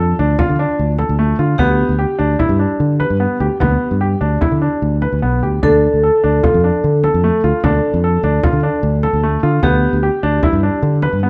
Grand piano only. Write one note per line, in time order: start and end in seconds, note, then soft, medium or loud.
0.00 0.15 A4 medium
0.19 0.35 D4 medium
0.39 0.55 F4 medium
0.59 0.91 D4 medium
0.99 1.15 A4 medium
1.19 1.35 A3 medium
1.39 1.55 F4 medium
1.59 1.91 B3 medium
1.99 2.15 G4 medium
2.19 2.35 D4 medium
2.39 2.55 E4 medium
2.59 2.92 D4 medium
3.00 3.16 B4 medium
3.20 3.36 B3 medium
3.40 3.56 G4 medium
3.60 3.93 B3 medium
4.01 4.17 G4 medium
4.21 4.37 D4 medium
4.41 4.57 E4 medium
4.62 4.94 D4 medium
5.02 5.18 B4 medium
5.22 5.39 B3 medium
5.43 5.59 G4 medium
5.63 5.95 D4 medium
6.03 6.20 A4 medium
6.24 6.40 D4 medium
6.43 6.59 F4 medium
6.64 6.96 D4 medium
7.04 7.20 A4 medium
7.24 7.40 A3 medium
7.44 7.60 F4 medium
7.64 7.96 D4 medium
8.04 8.20 A4 medium
8.24 8.39 D4 medium
8.44 8.59 F4 medium
8.63 8.95 D4 medium
9.03 9.19 A4 medium
9.23 9.39 A3 medium
9.43 9.59 F4 medium
9.63 9.95 B3 medium
10.03 10.19 G4 medium
10.23 10.39 D4 medium
10.43 10.59 E4 medium
10.63 10.95 D4 medium
11.03 11.19 B4 medium
11.23 11.30 B3 medium